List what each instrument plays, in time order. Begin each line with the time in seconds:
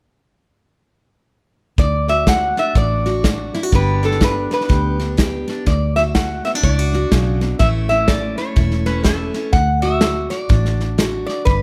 1.78 fingered electric bass D2, steel-string acoustic guitar D3, resonator guitar played with a steel bar D5, kick, snare
2.08 steel-string acoustic guitar F#4, resonator guitar played with a steel bar E5, snare
2.27 steel-string acoustic guitar A3, resonator guitar played with a steel bar F#5, kick, snare, hi-hat pedal
2.57 steel-string acoustic guitar D4, resonator guitar played with a steel bar E5, snare
2.75 fingered electric bass A1, steel-string acoustic guitar A2 F#4, resonator guitar played with a steel bar D5, kick, snare
3.05 steel-string acoustic guitar F#4, snare
3.24 steel-string acoustic guitar A3 F#4, kick, snare, hi-hat pedal
3.54 steel-string acoustic guitar E4, snare
3.63 steel-string acoustic guitar F#4
3.72 fingered electric bass G1, steel-string acoustic guitar G2 D3 B3 D4 G4, resonator guitar played with a steel bar B4, kick, snare
4.03 steel-string acoustic guitar D4, resonator guitar played with a steel bar A4, snare
4.12 snare
4.20 steel-string acoustic guitar D3, resonator guitar played with a steel bar B4, kick, snare, hi-hat pedal
4.51 steel-string acoustic guitar B3, resonator guitar played with a steel bar B4, snare
4.61 snare
4.69 fingered electric bass D2, steel-string acoustic guitar G2 G4, kick, snare
5.00 steel-string acoustic guitar D4, snare
5.17 steel-string acoustic guitar D3 G4, kick, snare, hi-hat pedal
5.48 steel-string acoustic guitar D4, snare
5.66 fingered electric bass D2, steel-string acoustic guitar D3, resonator guitar played with a steel bar D5, kick, snare
5.96 steel-string acoustic guitar F#4, resonator guitar played with a steel bar E5, snare
6.15 steel-string acoustic guitar A3, resonator guitar played with a steel bar F#5, kick, snare, hi-hat pedal
6.45 steel-string acoustic guitar B3, resonator guitar played with a steel bar E5, snare
6.54 steel-string acoustic guitar D4, snare
6.63 fingered electric bass C#2, steel-string acoustic guitar A2 E4, resonator guitar played with a steel bar D5, kick, snare
6.79 steel-string acoustic guitar F#4
6.93 steel-string acoustic guitar F#4, snare
7.12 fingered electric bass B1, steel-string acoustic guitar C#3, kick, snare, hi-hat pedal
7.41 steel-string acoustic guitar B2, snare
7.59 fingered electric bass A1, steel-string acoustic guitar A2 E3 A3 C#4 E4, resonator guitar played with a steel bar E5, kick, snare
7.89 steel-string acoustic guitar C#4, resonator guitar played with a steel bar E5, snare
8.08 steel-string acoustic guitar E3, resonator guitar played with a steel bar D5, kick, snare, hi-hat pedal
8.38 steel-string acoustic guitar A3, resonator guitar played with a steel bar C#5, snare
8.56 fingered electric bass E1, steel-string acoustic guitar E2 E4, kick, snare
8.71 snare
8.86 steel-string acoustic guitar C#4, resonator guitar played with a steel bar B4, snare
9.03 steel-string acoustic guitar E3 E4, resonator guitar played with a steel bar A4 B4, kick, snare, hi-hat pedal
9.34 steel-string acoustic guitar C#4, snare
9.53 fingered electric bass D2, steel-string acoustic guitar D3, resonator guitar played with a steel bar F#5, kick, snare
9.82 steel-string acoustic guitar F#4, resonator guitar played with a steel bar E5, snare
10.01 steel-string acoustic guitar A3, snare, hi-hat pedal
10.30 steel-string acoustic guitar F#4, resonator guitar played with a steel bar D5, snare
10.49 fingered electric bass A1, steel-string acoustic guitar A2 D4, kick, snare
10.65 snare
10.80 snare
10.98 steel-string acoustic guitar A3 F#4, snare, hi-hat pedal
11.26 resonator guitar played with a steel bar D5, snare
11.45 fingered electric bass G1, steel-string acoustic guitar G2, resonator guitar played with a steel bar B4, kick, snare